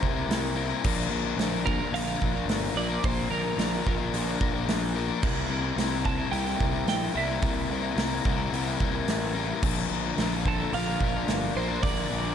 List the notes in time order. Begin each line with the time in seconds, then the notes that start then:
Already playing: C3 C5
0.00 C2 G3 A#3 E4 A#4, kick
0.13 A#3 E4 A#4
0.27 C2, snare, open hi-hat
0.54 G3 A#3 E4 A#4
0.69 A#3 E4 A#4
0.82 A#1 A#2 D3 F3 A#3 D4 A#4, kick, crash
1.08 A#1 F3 A#3 D4 A#4
1.24 F3 A#3 D4 A#4
1.37 A#1 A#2 D3 F3 A#3 D4, snare, open hi-hat
1.42 A#4
1.64 F3 A#3 D4 A#4, kick
1.79 F3 A#3 D4 A#4
1.91 A#1 A#2 D3 F3 A#3 D4 A#4 F5
1.95 open hi-hat
2.05 F3 A#3 D4 A#4
2.19 A#1 F3 A#3 D4 A#4, kick
2.33 F3 A#3 D4 A#4
2.46 G1, snare, open hi-hat
2.74 A#1 F3 A#3 D4 D5
2.79 A#4
2.89 F3 A#3 D4 A#4
3.03 A#1 A#2 D3 F3 A#3 D4 A#4 C5, kick, open hi-hat
3.30 A#1 F3 A#3 D4 A#4
3.43 F3 A#3 D4 A#4
3.57 A#1 A#2 D3 F3 A#3 D4 A#4, snare, open hi-hat
3.84 A#1 F3 A#3 D4 A#4, kick
3.97 F3 A#3 D4 A#4
4.12 A#1 A#2 D3 F3 A#3 D4 A#4, open hi-hat
4.25 F3 A#3 D4 A#4
4.38 A#1 F3 A#3 D4 A#4, kick
4.52 F3 A#3 D4 A#4
4.67 A#1, snare, open hi-hat
4.93 F3 A#3 D4 A#4
5.08 F3 A#3 D4 A#4
5.22 C2 C3 G3 A#3 E4 A#4, kick, crash
5.49 C2 G3 A#3 E4 A#4
5.62 A#3 E4 A#4
5.76 C2 C3 G3 A#3 E4 A#4, snare, open hi-hat
6.03 G3 A#3 E4 A#4 A5, kick
6.17 A#3 E4 A#4
6.29 C2 C3 G3 A#3 E4 G5, open hi-hat
6.33 A#4
6.44 A#3 E4 A#4
6.57 C2 G3 A#3 E4 A#4, kick
6.71 A#3 E4 A#4
6.86 A#1 G5, snare, open hi-hat
7.12 C2 G3 A#3 E4 A#4
7.17 E5
7.26 A#3 E4 A#4
7.39 C2 C3 G3 A#3 E4 A#4, kick, open hi-hat
7.68 C2 G3 A#3 E4 A#4
7.81 A#3 E4 A#4
7.95 C2 C3 G3 A#3 E4 A#4, snare, open hi-hat
8.22 C2 G3 A#3 E4 A#4, kick
8.37 A#3 E4 A#4
8.51 C2 C3 G3 A#3 E4 A#4, open hi-hat
8.65 A#3 E4 A#4
8.77 C2 G3 A#3 E4 A#4, kick
8.91 A#3 E4 A#4
9.08 A1, snare, open hi-hat
9.33 G3 A#3 E4 A#4
9.48 A#3 E4 A#4
9.61 A#1 A#2 D3 F3 A#3 D4 A#4, kick, crash
9.89 A#1 F3 A#3 D4 A#4
10.03 F3 A#3 D4 A#4
10.17 A#1 A#2 D3 F3 A#3 D4, snare, open hi-hat
10.21 A#4
10.45 F3 A#3 D4 A4 A#4, kick
10.60 F3 A#3 D4 A#4
10.72 A#1 A#2 D3 F3 A#3 D4 F5, open hi-hat
10.77 A#4
10.86 F3 A#3 D4 A#4
11.00 A#1 F3 A#3 D4 A#4, kick
11.14 F3 A#3 D4 A#4
11.28 G1, snare, open hi-hat
11.55 A#1 F3 A#3 D4 C5
11.59 A#4
11.69 F3 A#3 D4 A#4
11.82 A#1 A#2 D3 F3 A#3 D4 A#4 D5, kick, open hi-hat
12.09 A#1 F3 A#3 D4 A#4
12.23 F3 A#3 D4 A#4